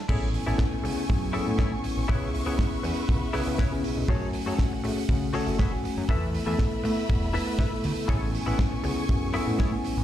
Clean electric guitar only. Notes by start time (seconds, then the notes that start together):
0.09 E4 G#4 A4 C#5
0.46 E4 G#4 A4 C#5
0.72 muted clean electric guitar stroke
0.84 muted clean electric guitar stroke
0.96 muted clean electric guitar stroke
1.33 E4 G#4 A4 C#5
1.58 E4 G#4 A4 C#5
1.83 muted clean electric guitar stroke
2.08 E4 G#4 B4 C#5
2.46 E4 G#4 B4 C#5
2.71 muted clean electric guitar stroke
2.83 muted clean electric guitar stroke
2.96 muted clean electric guitar stroke
3.33 E4 G#4 B4 C#5
3.58 E4 G#4 B4 C#5
3.84 muted clean electric guitar stroke
4.09 F#4 G#4 A4 C#5
4.46 F#4 G#4 A4 C#5
4.72 muted clean electric guitar stroke
4.84 muted clean electric guitar stroke
4.97 muted clean electric guitar stroke
5.34 F#4 G#4 A4 C#5
5.59 F#4 G#4 A4 B4
5.84 muted clean electric guitar stroke
6.09 E4 A4 B4 E5
6.46 E4 A4 B4 E5
6.71 muted clean electric guitar stroke
6.84 muted clean electric guitar stroke
6.96 muted clean electric guitar stroke
7.33 E4 A4 B4 E5
7.59 E4 A4 B4 E5
7.84 muted clean electric guitar stroke
8.08 E4 G#4 A4 C#5
8.46 E4 G#4 A4 B4
8.71 muted clean electric guitar stroke
8.84 muted clean electric guitar stroke
8.97 muted clean electric guitar stroke
9.34 E4 G#4 A4 E5
9.59 E4 G#4 A4 C#5
9.84 muted clean electric guitar stroke